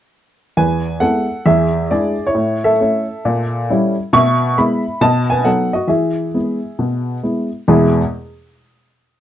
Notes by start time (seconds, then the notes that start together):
0.57 E2 B4 G#5
1.00 G#3 B3 E4 A4 F#5
1.46 E2 G#4 E5
1.91 G#3 D4 E4 G#4 D5
2.27 E4 C#5
2.35 A2
2.64 A4 E5
2.80 A3 C#4 E4
3.25 A#2
3.70 G3 C#4 E4
4.13 B2 E5 C#6
4.58 G#3 B3 E4 E5 B5
5.01 B2 D#5 A5
5.30 B4 G#5
5.45 F#3 B3 D#4 A4 F#5
5.73 F#4 D#5
5.87 E3 G#4 E5
6.34 G#3 B3 E4
6.79 B2
7.23 G#3 B3 E4
7.68 E2 B2 G#3 B3 E4 G#4